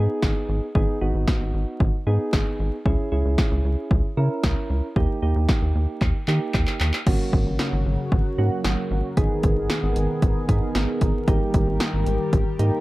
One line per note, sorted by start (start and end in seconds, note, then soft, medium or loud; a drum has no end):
0.00 0.66 B3 medium
0.00 0.66 D#4 medium
0.00 0.66 G#4 medium
0.22 0.34 G#1 loud
0.22 kick loud
0.22 snare loud
0.49 0.60 G#1 loud
0.75 0.87 G#1 loud
0.75 0.98 B3 medium
0.75 0.99 D#4 medium
0.75 0.98 G#4 medium
0.75 kick loud
1.01 1.13 G#1 loud
1.01 1.95 B3 medium
1.01 1.95 D#4 medium
1.01 1.95 F#4 medium
1.14 1.26 G#1 loud
1.28 kick loud
1.28 snare loud
1.41 1.52 G#1 medium
1.54 1.66 G#1 medium
1.80 1.92 G#1 loud
1.80 kick loud
2.07 2.18 G#2 loud
2.07 2.77 B3 medium
2.07 2.77 D#4 medium
2.07 2.77 G#4 medium
2.33 2.45 G#1 loud
2.33 kick loud
2.33 snare loud
2.59 2.71 G#1 loud
2.85 2.97 C#2 loud
2.85 3.09 C#4 medium
2.85 3.09 E4 medium
2.85 3.09 G#4 medium
2.85 kick loud
3.12 3.23 C#2 loud
3.12 4.06 C#4 medium
3.12 4.06 E4 medium
3.12 4.06 G#4 medium
3.25 3.37 C#2 loud
3.38 kick loud
3.38 snare loud
3.51 3.63 C#2 loud
3.65 3.76 C#2 loud
3.91 4.02 C#2 loud
3.91 kick loud
4.17 4.29 C#3 medium
4.17 4.88 C#4 medium
4.17 4.88 E4 medium
4.17 4.88 A#4 medium
4.43 4.55 C#2 loud
4.43 kick loud
4.43 snare loud
4.70 4.81 C#2 loud
4.96 5.08 D#2 loud
4.96 5.20 A#3 medium
4.96 5.20 D#4 medium
4.96 5.20 G4 medium
4.96 kick loud
5.22 5.34 D#2 medium
5.22 6.16 A#3 medium
5.22 6.16 D#4 medium
5.22 6.16 G4 medium
5.36 5.47 D#2 loud
5.49 kick loud
5.49 snare loud
5.62 5.73 D#2 medium
5.75 5.87 D#2 medium
6.01 6.13 D#2 loud
6.01 kick loud
6.01 clap medium
6.28 6.39 D#3 medium
6.28 6.98 A#3 medium
6.28 6.98 D#4 medium
6.28 6.98 G4 medium
6.28 clap medium
6.54 6.66 D#2 loud
6.54 kick loud
6.54 clap medium
6.67 clap medium
6.80 6.92 D#2 loud
6.80 clap medium
6.93 clap medium
7.07 7.18 G#1 loud
7.07 9.15 C#3 medium
7.07 9.15 F#3 medium
7.07 8.00 A#3 medium
7.07 8.00 C#4 medium
7.07 8.00 F#4 medium
7.07 9.15 F#4 medium
7.07 12.80 A#4 medium
7.07 kick loud
7.07 crash medium
7.33 7.45 G#1 loud
7.33 kick loud
7.46 7.58 G#1 loud
7.59 snare loud
7.73 7.84 G#1 loud
7.86 7.97 G#1 loud
8.12 8.23 G#1 loud
8.12 kick loud
8.38 8.50 G#2 medium
8.38 9.09 A#3 medium
8.38 9.09 C#4 medium
8.38 9.09 F#4 medium
8.64 8.76 G#1 loud
8.64 snare loud
8.91 9.02 G#1 loud
9.17 9.29 G#1 loud
9.17 11.26 D#3 medium
9.17 10.11 B3 medium
9.17 11.26 B3 medium
9.17 10.11 D#4 medium
9.17 11.26 G#4 medium
9.17 10.11 G#4 medium
9.17 kick loud
9.17 closed hi-hat medium
9.43 9.55 G#1 loud
9.43 kick loud
9.43 closed hi-hat medium
9.57 9.68 G#1 loud
9.70 snare loud
9.70 closed hi-hat medium
9.83 9.95 G#1 loud
9.96 10.08 G#1 loud
9.96 closed hi-hat medium
10.22 10.34 G#1 loud
10.22 kick medium
10.22 closed hi-hat medium
10.49 10.60 G#2 loud
10.49 11.19 B3 medium
10.49 11.19 D#4 medium
10.49 11.19 G#4 medium
10.49 kick loud
10.49 closed hi-hat medium
10.75 10.87 G#1 loud
10.75 snare loud
10.75 closed hi-hat medium
11.01 11.13 G#1 loud
11.01 kick medium
11.01 closed hi-hat medium
11.28 11.39 G#1 loud
11.28 12.80 D#3 medium
11.28 12.80 G3 medium
11.28 12.21 A#3 medium
11.28 12.21 D#4 medium
11.28 12.21 G4 medium
11.28 12.80 G4 medium
11.28 kick loud
11.28 closed hi-hat medium
11.54 11.66 G#1 loud
11.54 kick loud
11.54 closed hi-hat medium
11.67 11.79 G#1 loud
11.80 snare loud
11.80 closed hi-hat medium
11.93 12.05 G#1 medium
12.06 12.18 G#1 loud
12.06 closed hi-hat medium
12.33 12.44 G#1 loud
12.33 kick medium
12.33 closed hi-hat medium
12.59 12.71 G#2 medium
12.59 12.80 A#3 medium
12.59 12.80 D#4 medium
12.59 12.80 G4 loud
12.59 closed hi-hat medium